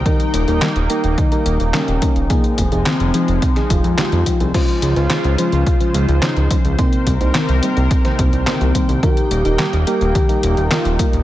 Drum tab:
CC |----------------|----------------|x---------------|----------------|
HH |xxxxxxxxxxxxxxxx|xxxxxxxxxxxxxxxx|xxxxxxxxxxxxxxxx|xxxxxxxxxxxxxxxx|
CP |----x-------x---|----x-------x---|----x-------x---|----x-------x---|
SD |----o-------o---|----o----o--o---|----o-------o---|----o----o--o---|
BD |o-------o-----o-|o-o-----o-o---o-|o-------o-----o-|o-o-----o-o---o-|

CC |----------------|
HH |xxxxxxxxxxxxxxxx|
CP |----x-------x---|
SD |----o-------o---|
BD |o-------o-----o-|